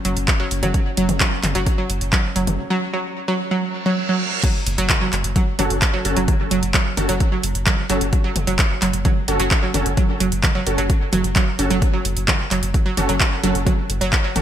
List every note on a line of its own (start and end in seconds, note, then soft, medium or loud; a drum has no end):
0.00 2.59 F#3 medium
0.00 2.59 C#4 medium
0.05 0.16 F#1 loud
0.05 0.10 F#3 medium
0.05 open hi-hat loud
0.17 0.28 F#1 medium
0.17 closed hi-hat medium
0.28 kick loud
0.28 clap loud
0.28 closed hi-hat medium
0.40 0.44 F#3 loud
0.51 0.62 F#1 loud
0.51 open hi-hat medium
0.63 0.74 F#1 medium
0.63 0.68 F#3 medium
0.63 closed hi-hat medium
0.63 mid tom medium
0.74 kick loud
0.74 closed hi-hat medium
0.97 1.08 F#1 loud
0.97 1.02 F#3 loud
0.97 open hi-hat loud
1.09 1.20 F#1 medium
1.09 closed hi-hat medium
1.09 mid tom medium
1.20 1.25 F#3 medium
1.20 kick loud
1.20 clap loud
1.20 closed hi-hat medium
1.43 1.55 F#1 loud
1.43 clap medium
1.43 open hi-hat medium
1.43 mid tom loud
1.55 1.66 F#1 medium
1.55 1.60 F#3 medium
1.55 closed hi-hat medium
1.67 kick loud
1.67 closed hi-hat medium
1.78 1.83 F#3 medium
1.90 2.01 F#1 loud
1.90 open hi-hat loud
2.01 2.12 F#1 medium
2.01 closed hi-hat medium
2.13 2.18 F#3 loud
2.13 kick loud
2.13 clap loud
2.13 closed hi-hat medium
2.36 2.47 F#1 loud
2.36 2.41 F#3 medium
2.36 open hi-hat medium
2.47 2.59 F#1 medium
2.47 closed hi-hat medium
2.47 mid tom medium
2.70 2.75 F#3 loud
2.93 2.98 F#3 medium
3.28 3.33 F#3 loud
3.51 3.56 F#3 medium
3.51 reverse cymbal medium
3.86 3.91 F#3 loud
4.09 4.14 F#3 medium
4.43 4.48 F#3 medium
4.43 kick loud
4.43 closed hi-hat medium
4.43 crash loud
4.43 impact medium
4.67 4.78 F#1 loud
4.67 open hi-hat loud
4.78 4.89 F#1 medium
4.78 4.83 F#3 loud
4.78 closed hi-hat medium
4.90 kick loud
4.90 clap loud
4.90 closed hi-hat medium
4.90 mid tom medium
5.01 5.06 F#3 medium
5.13 5.24 F#1 loud
5.13 clap medium
5.13 open hi-hat medium
5.24 5.36 F#1 medium
5.24 closed hi-hat medium
5.36 5.41 F#3 loud
5.36 kick loud
5.36 closed hi-hat medium
5.59 5.70 F#1 loud
5.59 5.64 F#3 medium
5.59 5.71 C#4 medium
5.59 5.71 F#4 medium
5.59 5.71 A4 loud
5.59 open hi-hat loud
5.59 mid tom medium
5.70 5.82 F#1 medium
5.70 closed hi-hat medium
5.82 kick loud
5.82 clap loud
5.82 closed hi-hat medium
5.94 5.98 F#3 loud
6.05 6.16 F#1 loud
6.05 6.17 C#4 medium
6.05 6.17 F#4 medium
6.05 6.17 A4 medium
6.05 open hi-hat medium
6.17 6.28 F#1 medium
6.17 6.21 F#3 medium
6.17 closed hi-hat medium
6.28 kick loud
6.28 closed hi-hat medium
6.28 mid tom medium
6.51 6.62 F#1 loud
6.51 6.56 F#3 loud
6.51 open hi-hat loud
6.63 6.74 F#1 medium
6.63 closed hi-hat medium
6.74 6.79 F#3 medium
6.74 kick loud
6.74 clap loud
6.74 closed hi-hat medium
6.97 7.08 F#1 loud
6.97 7.09 C#4 medium
6.97 7.09 F#4 medium
6.97 7.09 A4 medium
6.97 open hi-hat medium
6.97 mid tom medium
7.09 7.20 F#1 medium
7.09 7.14 F#3 loud
7.09 closed hi-hat medium
7.20 kick loud
7.20 closed hi-hat medium
7.32 7.37 F#3 medium
7.43 7.54 F#1 loud
7.43 open hi-hat loud
7.55 7.66 F#1 medium
7.55 closed hi-hat medium
7.66 7.71 F#3 loud
7.66 kick loud
7.66 clap loud
7.66 closed hi-hat medium
7.66 mid tom medium
7.90 8.01 F#1 loud
7.90 7.94 F#3 medium
7.90 7.97 C#4 loud
7.90 7.97 F#4 medium
7.90 7.97 A4 loud
7.90 open hi-hat loud
8.01 8.12 F#1 medium
8.01 closed hi-hat medium
8.13 kick loud
8.13 closed hi-hat medium
8.24 8.29 F#3 loud
8.36 8.47 F#1 loud
8.36 open hi-hat loud
8.36 mid tom loud
8.47 8.59 F#1 medium
8.47 8.52 F#3 medium
8.47 closed hi-hat medium
8.59 kick loud
8.59 clap loud
8.59 closed hi-hat medium
8.82 8.93 F#1 loud
8.82 8.87 F#3 loud
8.82 clap medium
8.82 open hi-hat loud
8.93 9.05 F#1 medium
8.93 closed hi-hat medium
9.05 9.10 F#3 medium
9.05 kick loud
9.05 closed hi-hat medium
9.05 mid tom medium
9.28 9.39 F#1 medium
9.28 9.40 C#4 medium
9.28 9.40 F#4 medium
9.28 9.40 A4 loud
9.28 open hi-hat loud
9.40 9.51 F#1 medium
9.40 9.44 F#3 loud
9.40 closed hi-hat medium
9.51 kick loud
9.51 clap loud
9.51 closed hi-hat medium
9.63 9.68 F#3 medium
9.74 9.85 F#1 loud
9.74 9.86 C#4 medium
9.74 9.86 F#4 medium
9.74 9.86 A4 medium
9.74 open hi-hat loud
9.74 mid tom medium
9.86 9.97 F#1 medium
9.86 closed hi-hat medium
9.97 10.02 F#3 loud
9.97 kick loud
9.97 closed hi-hat medium
10.20 10.31 F#1 loud
10.20 10.25 F#3 medium
10.20 open hi-hat loud
10.32 10.43 F#1 medium
10.32 closed hi-hat medium
10.43 kick loud
10.43 clap loud
10.43 closed hi-hat medium
10.43 mid tom loud
10.55 10.60 F#3 loud
10.66 10.78 F#1 loud
10.66 10.79 C#4 medium
10.66 10.79 F#4 medium
10.66 10.79 A4 medium
10.66 open hi-hat loud
10.78 10.89 F#1 medium
10.78 10.83 F#3 medium
10.78 closed hi-hat medium
10.90 kick loud
10.90 closed hi-hat medium
11.13 11.24 F#1 loud
11.13 11.18 F#3 loud
11.13 open hi-hat loud
11.13 mid tom medium
11.24 11.36 F#1 medium
11.24 closed hi-hat medium
11.36 11.41 F#3 medium
11.36 kick loud
11.36 clap loud
11.36 closed hi-hat medium
11.59 11.70 F#1 loud
11.59 11.66 C#4 loud
11.59 11.66 F#4 medium
11.59 11.66 A4 loud
11.59 open hi-hat medium
11.70 11.82 F#1 medium
11.70 11.75 F#3 loud
11.70 closed hi-hat medium
11.82 kick loud
11.82 closed hi-hat medium
11.93 11.98 F#3 medium
12.05 12.16 F#1 loud
12.05 open hi-hat loud
12.17 12.28 F#1 medium
12.17 closed hi-hat medium
12.28 12.33 F#3 loud
12.28 kick loud
12.28 clap loud
12.28 closed hi-hat medium
12.28 mid tom loud
12.51 12.62 F#1 loud
12.51 12.56 F#3 medium
12.51 clap medium
12.51 open hi-hat medium
12.63 12.74 F#1 medium
12.63 closed hi-hat medium
12.74 kick loud
12.74 closed hi-hat medium
12.86 12.91 F#3 loud
12.97 13.08 F#1 loud
12.97 13.10 C#4 medium
12.97 13.09 F#4 medium
12.97 13.10 A4 loud
12.97 open hi-hat loud
12.97 mid tom medium
13.09 13.20 F#1 medium
13.09 13.14 F#3 medium
13.09 closed hi-hat medium
13.20 kick loud
13.20 clap loud
13.20 closed hi-hat medium
13.43 13.54 F#1 loud
13.43 13.48 F#3 loud
13.43 13.56 C#4 medium
13.43 13.56 F#4 medium
13.43 13.56 A4 medium
13.43 open hi-hat medium
13.55 13.66 F#1 medium
13.55 closed hi-hat medium
13.66 13.71 F#3 medium
13.66 kick loud
13.66 closed hi-hat medium
13.66 mid tom loud
13.90 14.01 F#1 loud
13.90 open hi-hat loud
14.01 14.12 F#1 medium
14.01 14.06 F#3 loud
14.01 closed hi-hat medium
14.13 kick loud
14.13 clap loud
14.13 closed hi-hat medium
14.24 14.29 F#3 medium
14.36 14.42 F#1 loud
14.36 14.42 C#4 medium
14.36 14.42 F#4 medium
14.36 14.42 A4 medium
14.36 open hi-hat medium
14.36 mid tom loud